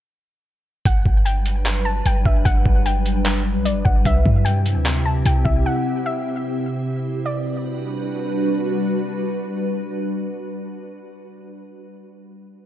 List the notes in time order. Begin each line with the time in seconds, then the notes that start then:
0.85 G1 F#3 G3 D4 B4 F#5, kick, closed hi-hat
1.05 G1, kick
1.25 G5, closed hi-hat
1.46 closed hi-hat
1.65 clap, closed hi-hat
1.85 A5
2.06 G1 G5, closed hi-hat
2.25 G1 E5, kick
2.45 G1 F#5, kick, closed hi-hat
2.66 G1, kick
2.86 G5, closed hi-hat
3.06 closed hi-hat
3.25 clap, closed hi-hat
3.55 B1
3.65 D5, closed hi-hat
3.70 G1
3.85 G1 F#5, kick
4.05 C2 C3 C4 E4 G4 E5, kick, closed hi-hat
4.26 G2, kick
4.45 G5, closed hi-hat
4.66 closed hi-hat
4.76 D2
4.85 clap, closed hi-hat
5.05 A5
5.26 C2 G5, closed hi-hat
5.45 C2 E5, kick
5.66 F#5
6.06 E5
7.26 G3 D4 F#4 B4 D5